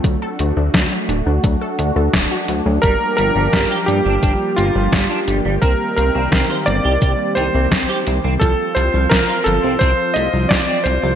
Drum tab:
HH |xxxxxxxx|xxxxxxxx|xxxxxxxx|xxxxxxxx|
SD |--o---o-|--o---o-|--o---o-|--o---o-|
BD |o-o-o-o-|o-o-o-o-|o-o-o-o-|o-o-o-o-|